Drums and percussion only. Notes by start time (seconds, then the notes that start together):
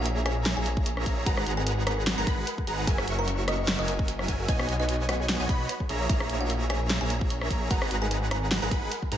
0.06 closed hi-hat
0.26 cross-stick, closed hi-hat
0.46 snare, closed hi-hat
0.66 closed hi-hat
0.77 kick
0.86 closed hi-hat
0.97 cross-stick
1.06 kick, closed hi-hat
1.26 kick, closed hi-hat
1.37 cross-stick
1.47 closed hi-hat
1.67 closed hi-hat
1.87 cross-stick, closed hi-hat
2.07 snare, closed hi-hat
2.27 kick, closed hi-hat
2.47 closed hi-hat
2.58 kick
2.67 closed hi-hat
2.87 kick, closed hi-hat
2.98 cross-stick
3.08 closed hi-hat
3.28 closed hi-hat
3.48 cross-stick, closed hi-hat
3.68 snare, closed hi-hat
3.88 closed hi-hat
3.99 kick
4.08 closed hi-hat
4.19 cross-stick
4.28 kick, closed hi-hat
4.48 kick, closed hi-hat
4.59 cross-stick
4.69 closed hi-hat
4.89 closed hi-hat
5.09 cross-stick, closed hi-hat
5.29 snare, closed hi-hat
5.49 kick, closed hi-hat
5.69 closed hi-hat
5.80 kick
5.89 closed hi-hat
6.09 kick, closed hi-hat
6.20 cross-stick
6.30 closed hi-hat
6.50 closed hi-hat
6.70 cross-stick, closed hi-hat
6.90 snare, closed hi-hat
7.10 closed hi-hat
7.21 kick
7.30 closed hi-hat
7.41 cross-stick
7.51 kick, closed hi-hat
7.71 kick, closed hi-hat
7.82 cross-stick
7.91 closed hi-hat
8.11 closed hi-hat
8.31 cross-stick, closed hi-hat
8.51 snare, closed hi-hat
8.71 kick, closed hi-hat
8.92 closed hi-hat
9.02 kick
9.12 closed hi-hat